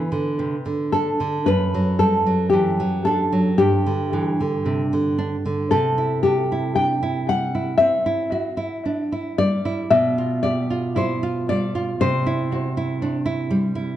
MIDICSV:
0, 0, Header, 1, 3, 480
1, 0, Start_track
1, 0, Key_signature, 1, "major"
1, 0, Tempo, 1065719
1, 664, Time_signature, 4, 2, 24, 8
1, 3053, Tempo, 1045296
1, 5453, Tempo, 1003344
1, 6391, End_track
2, 0, Start_track
2, 0, Title_t, "Nylon-string guitar"
2, 0, Program_c, 0, 24
2, 0, Note_on_c, 0, 71, 62
2, 399, Note_off_c, 0, 71, 0
2, 416, Note_on_c, 0, 69, 55
2, 644, Note_off_c, 0, 69, 0
2, 658, Note_on_c, 0, 71, 57
2, 882, Note_off_c, 0, 71, 0
2, 897, Note_on_c, 0, 69, 55
2, 1122, Note_off_c, 0, 69, 0
2, 1124, Note_on_c, 0, 67, 53
2, 1355, Note_off_c, 0, 67, 0
2, 1373, Note_on_c, 0, 69, 56
2, 1602, Note_off_c, 0, 69, 0
2, 1612, Note_on_c, 0, 67, 60
2, 2314, Note_off_c, 0, 67, 0
2, 2571, Note_on_c, 0, 69, 58
2, 2797, Note_off_c, 0, 69, 0
2, 2805, Note_on_c, 0, 67, 53
2, 3030, Note_off_c, 0, 67, 0
2, 3042, Note_on_c, 0, 79, 63
2, 3268, Note_off_c, 0, 79, 0
2, 3288, Note_on_c, 0, 78, 64
2, 3508, Note_off_c, 0, 78, 0
2, 3511, Note_on_c, 0, 76, 69
2, 4228, Note_off_c, 0, 76, 0
2, 4249, Note_on_c, 0, 74, 63
2, 4478, Note_off_c, 0, 74, 0
2, 4489, Note_on_c, 0, 76, 70
2, 4716, Note_off_c, 0, 76, 0
2, 4729, Note_on_c, 0, 74, 65
2, 4957, Note_off_c, 0, 74, 0
2, 4979, Note_on_c, 0, 72, 58
2, 5202, Note_off_c, 0, 72, 0
2, 5217, Note_on_c, 0, 74, 65
2, 5438, Note_off_c, 0, 74, 0
2, 5455, Note_on_c, 0, 72, 67
2, 6154, Note_off_c, 0, 72, 0
2, 6391, End_track
3, 0, Start_track
3, 0, Title_t, "Nylon-string guitar"
3, 0, Program_c, 1, 24
3, 0, Note_on_c, 1, 52, 35
3, 52, Note_off_c, 1, 52, 0
3, 53, Note_on_c, 1, 50, 35
3, 176, Note_on_c, 1, 48, 31
3, 250, Note_off_c, 1, 50, 0
3, 296, Note_on_c, 1, 50, 35
3, 299, Note_off_c, 1, 48, 0
3, 424, Note_on_c, 1, 62, 40
3, 493, Note_off_c, 1, 50, 0
3, 541, Note_on_c, 1, 50, 36
3, 617, Note_off_c, 1, 62, 0
3, 663, Note_off_c, 1, 50, 0
3, 665, Note_on_c, 1, 42, 44
3, 786, Note_on_c, 1, 54, 36
3, 901, Note_on_c, 1, 55, 31
3, 975, Note_off_c, 1, 54, 0
3, 1020, Note_on_c, 1, 54, 36
3, 1021, Note_off_c, 1, 55, 0
3, 1140, Note_on_c, 1, 52, 33
3, 1213, Note_off_c, 1, 54, 0
3, 1260, Note_on_c, 1, 54, 36
3, 1261, Note_off_c, 1, 52, 0
3, 1381, Note_on_c, 1, 62, 39
3, 1453, Note_off_c, 1, 54, 0
3, 1498, Note_on_c, 1, 54, 36
3, 1575, Note_off_c, 1, 62, 0
3, 1606, Note_off_c, 1, 42, 0
3, 1619, Note_on_c, 1, 43, 50
3, 1621, Note_off_c, 1, 54, 0
3, 1741, Note_on_c, 1, 50, 37
3, 1860, Note_on_c, 1, 52, 33
3, 1934, Note_off_c, 1, 50, 0
3, 1981, Note_off_c, 1, 52, 0
3, 1984, Note_on_c, 1, 50, 36
3, 2097, Note_on_c, 1, 48, 33
3, 2171, Note_off_c, 1, 50, 0
3, 2216, Note_off_c, 1, 48, 0
3, 2220, Note_on_c, 1, 50, 37
3, 2335, Note_on_c, 1, 62, 38
3, 2410, Note_off_c, 1, 50, 0
3, 2457, Note_on_c, 1, 50, 38
3, 2529, Note_off_c, 1, 62, 0
3, 2558, Note_off_c, 1, 43, 0
3, 2575, Note_on_c, 1, 48, 47
3, 2578, Note_off_c, 1, 50, 0
3, 2693, Note_on_c, 1, 64, 37
3, 2814, Note_on_c, 1, 66, 35
3, 2886, Note_off_c, 1, 64, 0
3, 2934, Note_off_c, 1, 66, 0
3, 2936, Note_on_c, 1, 64, 38
3, 3047, Note_on_c, 1, 62, 35
3, 3125, Note_off_c, 1, 64, 0
3, 3167, Note_on_c, 1, 64, 38
3, 3170, Note_off_c, 1, 62, 0
3, 3289, Note_on_c, 1, 55, 42
3, 3359, Note_off_c, 1, 64, 0
3, 3406, Note_on_c, 1, 64, 38
3, 3478, Note_off_c, 1, 55, 0
3, 3506, Note_off_c, 1, 48, 0
3, 3521, Note_on_c, 1, 60, 40
3, 3596, Note_off_c, 1, 64, 0
3, 3641, Note_on_c, 1, 64, 41
3, 3714, Note_off_c, 1, 60, 0
3, 3761, Note_on_c, 1, 66, 37
3, 3835, Note_off_c, 1, 64, 0
3, 3876, Note_on_c, 1, 64, 41
3, 3884, Note_off_c, 1, 66, 0
3, 4007, Note_on_c, 1, 62, 35
3, 4077, Note_off_c, 1, 64, 0
3, 4130, Note_off_c, 1, 62, 0
3, 4130, Note_on_c, 1, 64, 40
3, 4249, Note_on_c, 1, 55, 43
3, 4326, Note_off_c, 1, 64, 0
3, 4373, Note_on_c, 1, 64, 43
3, 4446, Note_off_c, 1, 55, 0
3, 4491, Note_on_c, 1, 47, 50
3, 4496, Note_off_c, 1, 64, 0
3, 4616, Note_on_c, 1, 65, 39
3, 4734, Note_on_c, 1, 67, 36
3, 4809, Note_off_c, 1, 65, 0
3, 4856, Note_off_c, 1, 67, 0
3, 4856, Note_on_c, 1, 65, 41
3, 4973, Note_on_c, 1, 64, 37
3, 5049, Note_off_c, 1, 65, 0
3, 5096, Note_off_c, 1, 64, 0
3, 5097, Note_on_c, 1, 65, 44
3, 5217, Note_on_c, 1, 55, 45
3, 5289, Note_off_c, 1, 65, 0
3, 5336, Note_on_c, 1, 65, 40
3, 5407, Note_off_c, 1, 55, 0
3, 5433, Note_off_c, 1, 47, 0
3, 5454, Note_off_c, 1, 65, 0
3, 5454, Note_on_c, 1, 48, 55
3, 5577, Note_on_c, 1, 64, 42
3, 5700, Note_on_c, 1, 66, 39
3, 5770, Note_off_c, 1, 64, 0
3, 5819, Note_off_c, 1, 66, 0
3, 5820, Note_on_c, 1, 64, 43
3, 5939, Note_on_c, 1, 62, 39
3, 6009, Note_off_c, 1, 64, 0
3, 6051, Note_on_c, 1, 64, 44
3, 6056, Note_off_c, 1, 62, 0
3, 6171, Note_on_c, 1, 55, 49
3, 6243, Note_off_c, 1, 64, 0
3, 6289, Note_on_c, 1, 64, 46
3, 6365, Note_off_c, 1, 55, 0
3, 6391, Note_off_c, 1, 48, 0
3, 6391, Note_off_c, 1, 64, 0
3, 6391, End_track
0, 0, End_of_file